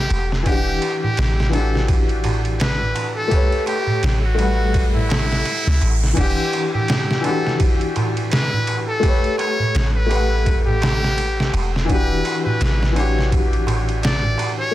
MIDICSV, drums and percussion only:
0, 0, Header, 1, 3, 480
1, 0, Start_track
1, 0, Tempo, 714286
1, 308, Time_signature, 4, 2, 24, 8
1, 9907, End_track
2, 0, Start_track
2, 0, Title_t, "Darbuka"
2, 66, Note_on_c, 9, 63, 83
2, 134, Note_off_c, 9, 63, 0
2, 207, Note_on_c, 9, 63, 32
2, 274, Note_off_c, 9, 63, 0
2, 308, Note_on_c, 9, 63, 52
2, 375, Note_off_c, 9, 63, 0
2, 549, Note_on_c, 9, 63, 80
2, 616, Note_off_c, 9, 63, 0
2, 693, Note_on_c, 9, 63, 36
2, 696, Note_on_c, 9, 64, 72
2, 760, Note_off_c, 9, 63, 0
2, 764, Note_off_c, 9, 64, 0
2, 791, Note_on_c, 9, 63, 51
2, 859, Note_off_c, 9, 63, 0
2, 929, Note_on_c, 9, 63, 31
2, 996, Note_off_c, 9, 63, 0
2, 1030, Note_on_c, 9, 63, 74
2, 1097, Note_off_c, 9, 63, 0
2, 1167, Note_on_c, 9, 63, 39
2, 1234, Note_off_c, 9, 63, 0
2, 1269, Note_on_c, 9, 63, 48
2, 1336, Note_off_c, 9, 63, 0
2, 1507, Note_on_c, 9, 64, 78
2, 1508, Note_on_c, 9, 63, 91
2, 1574, Note_off_c, 9, 64, 0
2, 1576, Note_off_c, 9, 63, 0
2, 1640, Note_on_c, 9, 63, 38
2, 1707, Note_off_c, 9, 63, 0
2, 1746, Note_on_c, 9, 63, 50
2, 1813, Note_off_c, 9, 63, 0
2, 1884, Note_on_c, 9, 63, 36
2, 1885, Note_on_c, 9, 64, 52
2, 1952, Note_off_c, 9, 63, 0
2, 1952, Note_off_c, 9, 64, 0
2, 1984, Note_on_c, 9, 63, 86
2, 2051, Note_off_c, 9, 63, 0
2, 2124, Note_on_c, 9, 63, 39
2, 2192, Note_off_c, 9, 63, 0
2, 2220, Note_on_c, 9, 63, 42
2, 2287, Note_off_c, 9, 63, 0
2, 2358, Note_on_c, 9, 63, 33
2, 2425, Note_off_c, 9, 63, 0
2, 2461, Note_on_c, 9, 63, 90
2, 2529, Note_off_c, 9, 63, 0
2, 2599, Note_on_c, 9, 63, 36
2, 2599, Note_on_c, 9, 64, 73
2, 2666, Note_off_c, 9, 63, 0
2, 2666, Note_off_c, 9, 64, 0
2, 2706, Note_on_c, 9, 63, 50
2, 2774, Note_off_c, 9, 63, 0
2, 2845, Note_on_c, 9, 63, 31
2, 2912, Note_off_c, 9, 63, 0
2, 2944, Note_on_c, 9, 63, 73
2, 3011, Note_off_c, 9, 63, 0
2, 3082, Note_on_c, 9, 63, 40
2, 3149, Note_off_c, 9, 63, 0
2, 3178, Note_on_c, 9, 63, 41
2, 3245, Note_off_c, 9, 63, 0
2, 3319, Note_on_c, 9, 63, 34
2, 3324, Note_on_c, 9, 64, 81
2, 3386, Note_off_c, 9, 63, 0
2, 3391, Note_off_c, 9, 64, 0
2, 3420, Note_on_c, 9, 63, 90
2, 3487, Note_off_c, 9, 63, 0
2, 3559, Note_on_c, 9, 63, 39
2, 3626, Note_off_c, 9, 63, 0
2, 3664, Note_on_c, 9, 63, 51
2, 3731, Note_off_c, 9, 63, 0
2, 3809, Note_on_c, 9, 63, 34
2, 3876, Note_off_c, 9, 63, 0
2, 3907, Note_on_c, 9, 63, 77
2, 3974, Note_off_c, 9, 63, 0
2, 4047, Note_on_c, 9, 63, 36
2, 4114, Note_off_c, 9, 63, 0
2, 4144, Note_on_c, 9, 63, 51
2, 4212, Note_off_c, 9, 63, 0
2, 4392, Note_on_c, 9, 63, 81
2, 4459, Note_off_c, 9, 63, 0
2, 4527, Note_on_c, 9, 63, 37
2, 4532, Note_on_c, 9, 64, 77
2, 4594, Note_off_c, 9, 63, 0
2, 4599, Note_off_c, 9, 64, 0
2, 4623, Note_on_c, 9, 63, 47
2, 4690, Note_off_c, 9, 63, 0
2, 4778, Note_on_c, 9, 63, 36
2, 4845, Note_off_c, 9, 63, 0
2, 4871, Note_on_c, 9, 63, 87
2, 4938, Note_off_c, 9, 63, 0
2, 5008, Note_on_c, 9, 63, 37
2, 5075, Note_off_c, 9, 63, 0
2, 5111, Note_on_c, 9, 63, 50
2, 5178, Note_off_c, 9, 63, 0
2, 5348, Note_on_c, 9, 63, 84
2, 5352, Note_on_c, 9, 64, 81
2, 5416, Note_off_c, 9, 63, 0
2, 5419, Note_off_c, 9, 64, 0
2, 5491, Note_on_c, 9, 63, 35
2, 5559, Note_off_c, 9, 63, 0
2, 5592, Note_on_c, 9, 63, 54
2, 5659, Note_off_c, 9, 63, 0
2, 5732, Note_on_c, 9, 64, 63
2, 5734, Note_on_c, 9, 63, 36
2, 5800, Note_off_c, 9, 64, 0
2, 5802, Note_off_c, 9, 63, 0
2, 5835, Note_on_c, 9, 63, 83
2, 5902, Note_off_c, 9, 63, 0
2, 5967, Note_on_c, 9, 63, 36
2, 6034, Note_off_c, 9, 63, 0
2, 6074, Note_on_c, 9, 63, 49
2, 6141, Note_off_c, 9, 63, 0
2, 6304, Note_on_c, 9, 63, 86
2, 6371, Note_off_c, 9, 63, 0
2, 6447, Note_on_c, 9, 64, 76
2, 6448, Note_on_c, 9, 63, 36
2, 6514, Note_off_c, 9, 64, 0
2, 6515, Note_off_c, 9, 63, 0
2, 6554, Note_on_c, 9, 63, 55
2, 6621, Note_off_c, 9, 63, 0
2, 6689, Note_on_c, 9, 63, 36
2, 6756, Note_off_c, 9, 63, 0
2, 6793, Note_on_c, 9, 63, 96
2, 6860, Note_off_c, 9, 63, 0
2, 6933, Note_on_c, 9, 63, 39
2, 7000, Note_off_c, 9, 63, 0
2, 7031, Note_on_c, 9, 63, 53
2, 7098, Note_off_c, 9, 63, 0
2, 7167, Note_on_c, 9, 64, 79
2, 7234, Note_off_c, 9, 64, 0
2, 7270, Note_on_c, 9, 63, 102
2, 7337, Note_off_c, 9, 63, 0
2, 7414, Note_on_c, 9, 63, 43
2, 7482, Note_off_c, 9, 63, 0
2, 7513, Note_on_c, 9, 63, 57
2, 7580, Note_off_c, 9, 63, 0
2, 7653, Note_on_c, 9, 63, 40
2, 7721, Note_off_c, 9, 63, 0
2, 7751, Note_on_c, 9, 63, 101
2, 7818, Note_off_c, 9, 63, 0
2, 7894, Note_on_c, 9, 63, 38
2, 7961, Note_off_c, 9, 63, 0
2, 7990, Note_on_c, 9, 63, 62
2, 8058, Note_off_c, 9, 63, 0
2, 8233, Note_on_c, 9, 63, 85
2, 8301, Note_off_c, 9, 63, 0
2, 8372, Note_on_c, 9, 63, 42
2, 8372, Note_on_c, 9, 64, 78
2, 8439, Note_off_c, 9, 63, 0
2, 8439, Note_off_c, 9, 64, 0
2, 8470, Note_on_c, 9, 63, 56
2, 8537, Note_off_c, 9, 63, 0
2, 8610, Note_on_c, 9, 63, 34
2, 8677, Note_off_c, 9, 63, 0
2, 8710, Note_on_c, 9, 63, 84
2, 8777, Note_off_c, 9, 63, 0
2, 8847, Note_on_c, 9, 63, 42
2, 8914, Note_off_c, 9, 63, 0
2, 8950, Note_on_c, 9, 63, 51
2, 9017, Note_off_c, 9, 63, 0
2, 9183, Note_on_c, 9, 64, 87
2, 9185, Note_on_c, 9, 63, 103
2, 9250, Note_off_c, 9, 64, 0
2, 9252, Note_off_c, 9, 63, 0
2, 9323, Note_on_c, 9, 63, 44
2, 9390, Note_off_c, 9, 63, 0
2, 9425, Note_on_c, 9, 63, 55
2, 9493, Note_off_c, 9, 63, 0
2, 9562, Note_on_c, 9, 64, 65
2, 9563, Note_on_c, 9, 63, 36
2, 9629, Note_off_c, 9, 64, 0
2, 9630, Note_off_c, 9, 63, 0
2, 9661, Note_on_c, 9, 63, 95
2, 9729, Note_off_c, 9, 63, 0
2, 9804, Note_on_c, 9, 63, 45
2, 9871, Note_off_c, 9, 63, 0
2, 9907, End_track
3, 0, Start_track
3, 0, Title_t, "Drums"
3, 69, Note_on_c, 9, 51, 68
3, 137, Note_off_c, 9, 51, 0
3, 217, Note_on_c, 9, 38, 38
3, 284, Note_off_c, 9, 38, 0
3, 308, Note_on_c, 9, 51, 82
3, 309, Note_on_c, 9, 36, 105
3, 375, Note_off_c, 9, 51, 0
3, 376, Note_off_c, 9, 36, 0
3, 551, Note_on_c, 9, 51, 63
3, 618, Note_off_c, 9, 51, 0
3, 788, Note_on_c, 9, 51, 85
3, 798, Note_on_c, 9, 38, 111
3, 856, Note_off_c, 9, 51, 0
3, 865, Note_off_c, 9, 38, 0
3, 941, Note_on_c, 9, 38, 56
3, 1008, Note_off_c, 9, 38, 0
3, 1030, Note_on_c, 9, 51, 67
3, 1097, Note_off_c, 9, 51, 0
3, 1178, Note_on_c, 9, 38, 41
3, 1245, Note_off_c, 9, 38, 0
3, 1266, Note_on_c, 9, 51, 90
3, 1268, Note_on_c, 9, 36, 112
3, 1333, Note_off_c, 9, 51, 0
3, 1335, Note_off_c, 9, 36, 0
3, 1406, Note_on_c, 9, 51, 40
3, 1474, Note_off_c, 9, 51, 0
3, 1504, Note_on_c, 9, 51, 64
3, 1571, Note_off_c, 9, 51, 0
3, 1646, Note_on_c, 9, 51, 39
3, 1713, Note_off_c, 9, 51, 0
3, 1746, Note_on_c, 9, 51, 84
3, 1755, Note_on_c, 9, 38, 117
3, 1813, Note_off_c, 9, 51, 0
3, 1823, Note_off_c, 9, 38, 0
3, 1987, Note_on_c, 9, 51, 67
3, 2054, Note_off_c, 9, 51, 0
3, 2227, Note_on_c, 9, 36, 96
3, 2227, Note_on_c, 9, 51, 76
3, 2294, Note_off_c, 9, 36, 0
3, 2294, Note_off_c, 9, 51, 0
3, 2368, Note_on_c, 9, 51, 41
3, 2435, Note_off_c, 9, 51, 0
3, 2467, Note_on_c, 9, 51, 65
3, 2534, Note_off_c, 9, 51, 0
3, 2707, Note_on_c, 9, 51, 87
3, 2717, Note_on_c, 9, 38, 106
3, 2774, Note_off_c, 9, 51, 0
3, 2784, Note_off_c, 9, 38, 0
3, 2948, Note_on_c, 9, 51, 64
3, 3015, Note_off_c, 9, 51, 0
3, 3187, Note_on_c, 9, 36, 104
3, 3187, Note_on_c, 9, 51, 82
3, 3254, Note_off_c, 9, 36, 0
3, 3254, Note_off_c, 9, 51, 0
3, 3428, Note_on_c, 9, 51, 66
3, 3437, Note_on_c, 9, 38, 112
3, 3495, Note_off_c, 9, 51, 0
3, 3504, Note_off_c, 9, 38, 0
3, 3578, Note_on_c, 9, 38, 44
3, 3645, Note_off_c, 9, 38, 0
3, 3666, Note_on_c, 9, 51, 87
3, 3733, Note_off_c, 9, 51, 0
3, 3818, Note_on_c, 9, 38, 54
3, 3886, Note_off_c, 9, 38, 0
3, 3907, Note_on_c, 9, 51, 64
3, 3974, Note_off_c, 9, 51, 0
3, 4055, Note_on_c, 9, 38, 36
3, 4122, Note_off_c, 9, 38, 0
3, 4145, Note_on_c, 9, 49, 84
3, 4145, Note_on_c, 9, 51, 78
3, 4147, Note_on_c, 9, 36, 101
3, 4213, Note_off_c, 9, 49, 0
3, 4213, Note_off_c, 9, 51, 0
3, 4214, Note_off_c, 9, 36, 0
3, 4389, Note_on_c, 9, 51, 64
3, 4457, Note_off_c, 9, 51, 0
3, 4626, Note_on_c, 9, 51, 84
3, 4635, Note_on_c, 9, 38, 116
3, 4693, Note_off_c, 9, 51, 0
3, 4702, Note_off_c, 9, 38, 0
3, 4776, Note_on_c, 9, 38, 53
3, 4843, Note_off_c, 9, 38, 0
3, 4866, Note_on_c, 9, 51, 66
3, 4933, Note_off_c, 9, 51, 0
3, 5017, Note_on_c, 9, 38, 43
3, 5084, Note_off_c, 9, 38, 0
3, 5106, Note_on_c, 9, 51, 92
3, 5107, Note_on_c, 9, 36, 109
3, 5173, Note_off_c, 9, 51, 0
3, 5175, Note_off_c, 9, 36, 0
3, 5248, Note_on_c, 9, 51, 42
3, 5316, Note_off_c, 9, 51, 0
3, 5348, Note_on_c, 9, 51, 62
3, 5415, Note_off_c, 9, 51, 0
3, 5490, Note_on_c, 9, 51, 45
3, 5557, Note_off_c, 9, 51, 0
3, 5588, Note_on_c, 9, 51, 88
3, 5597, Note_on_c, 9, 38, 111
3, 5655, Note_off_c, 9, 51, 0
3, 5664, Note_off_c, 9, 38, 0
3, 5828, Note_on_c, 9, 51, 71
3, 5895, Note_off_c, 9, 51, 0
3, 6069, Note_on_c, 9, 36, 105
3, 6069, Note_on_c, 9, 51, 83
3, 6136, Note_off_c, 9, 36, 0
3, 6136, Note_off_c, 9, 51, 0
3, 6210, Note_on_c, 9, 51, 39
3, 6277, Note_off_c, 9, 51, 0
3, 6311, Note_on_c, 9, 51, 61
3, 6378, Note_off_c, 9, 51, 0
3, 6551, Note_on_c, 9, 51, 85
3, 6560, Note_on_c, 9, 38, 117
3, 6618, Note_off_c, 9, 51, 0
3, 6627, Note_off_c, 9, 38, 0
3, 6792, Note_on_c, 9, 51, 67
3, 6859, Note_off_c, 9, 51, 0
3, 7031, Note_on_c, 9, 36, 111
3, 7031, Note_on_c, 9, 51, 87
3, 7098, Note_off_c, 9, 36, 0
3, 7098, Note_off_c, 9, 51, 0
3, 7271, Note_on_c, 9, 51, 65
3, 7280, Note_on_c, 9, 38, 109
3, 7338, Note_off_c, 9, 51, 0
3, 7347, Note_off_c, 9, 38, 0
3, 7421, Note_on_c, 9, 38, 49
3, 7488, Note_off_c, 9, 38, 0
3, 7511, Note_on_c, 9, 51, 86
3, 7579, Note_off_c, 9, 51, 0
3, 7661, Note_on_c, 9, 38, 55
3, 7729, Note_off_c, 9, 38, 0
3, 7753, Note_on_c, 9, 51, 68
3, 7820, Note_off_c, 9, 51, 0
3, 7903, Note_on_c, 9, 38, 41
3, 7970, Note_off_c, 9, 38, 0
3, 7991, Note_on_c, 9, 36, 101
3, 7993, Note_on_c, 9, 51, 86
3, 8058, Note_off_c, 9, 36, 0
3, 8060, Note_off_c, 9, 51, 0
3, 8232, Note_on_c, 9, 51, 65
3, 8300, Note_off_c, 9, 51, 0
3, 8473, Note_on_c, 9, 51, 89
3, 8482, Note_on_c, 9, 38, 121
3, 8540, Note_off_c, 9, 51, 0
3, 8549, Note_off_c, 9, 38, 0
3, 8620, Note_on_c, 9, 38, 58
3, 8687, Note_off_c, 9, 38, 0
3, 8711, Note_on_c, 9, 51, 69
3, 8778, Note_off_c, 9, 51, 0
3, 8861, Note_on_c, 9, 38, 40
3, 8928, Note_off_c, 9, 38, 0
3, 8951, Note_on_c, 9, 36, 114
3, 8953, Note_on_c, 9, 51, 88
3, 9018, Note_off_c, 9, 36, 0
3, 9021, Note_off_c, 9, 51, 0
3, 9093, Note_on_c, 9, 51, 45
3, 9160, Note_off_c, 9, 51, 0
3, 9193, Note_on_c, 9, 51, 72
3, 9260, Note_off_c, 9, 51, 0
3, 9332, Note_on_c, 9, 51, 46
3, 9399, Note_off_c, 9, 51, 0
3, 9430, Note_on_c, 9, 51, 91
3, 9440, Note_on_c, 9, 38, 119
3, 9497, Note_off_c, 9, 51, 0
3, 9507, Note_off_c, 9, 38, 0
3, 9671, Note_on_c, 9, 51, 68
3, 9739, Note_off_c, 9, 51, 0
3, 9907, End_track
0, 0, End_of_file